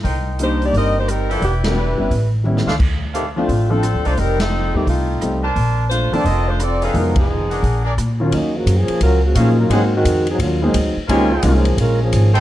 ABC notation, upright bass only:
X:1
M:4/4
L:1/8
Q:"Swing" 1/4=174
K:Eblyd
V:1 name="Upright bass" clef=bass
C,,4 G,,,4 | =E,,,3 G,,, A,,,3 ^C,, | D,,4 A,,,2- (3A,,, D,, C,, | F,,,3 E,, C,,2 C,,2 |
B,,,3 z F,,,4 | F,,,4 B,,,2 B,,2 | E,,2 _G,, z _D,,2 B,,2 | _A,,2 F,,2 E,,2 D,, z |
_D,,2 C,,2 B,,,2 _A,,,2 |]